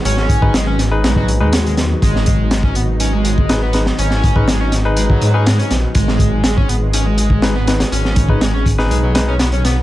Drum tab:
HH |x-x-x-x-x-x-xxx-|x-x-x-x-x-x-x-x-|x-x-x-x-x-x-xxx-|x-x-x-x-x-x-x-xx|
SD |-o--o-o-o---o-o-|-o--o-------o-oo|-o--o-o-----o-o-|-o--o-------o-oo|
BD |--oo-----o------|o-o--o-----o----|--oo-----o------|o-o--o-----o----|

HH |x-x-x-x-x-x-xxx-|
SD |-o--o--o--o-o-o-|
BD |--oo--o---------|